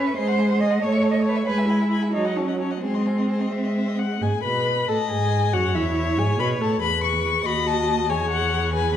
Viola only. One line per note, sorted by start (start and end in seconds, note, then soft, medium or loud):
0.00 0.11 C#4 medium
0.18 0.75 G#3 medium
0.82 1.39 A3 medium
1.48 2.06 G#3 medium
2.14 2.75 F#3 medium
2.83 3.45 G#3 medium
3.52 4.14 G#3 medium
4.22 4.43 G#4 medium
4.44 4.88 B4 medium
4.89 4.97 A4 medium
5.11 5.55 G#4 medium
5.54 5.77 F#4 medium
5.76 6.20 E4 medium
6.18 6.41 G#4 medium
6.39 6.63 B4 medium
6.61 6.82 A4 medium
6.82 7.47 G#4 medium
7.46 8.11 F#4 medium
8.09 8.74 G#4 medium
8.75 8.97 G#4 medium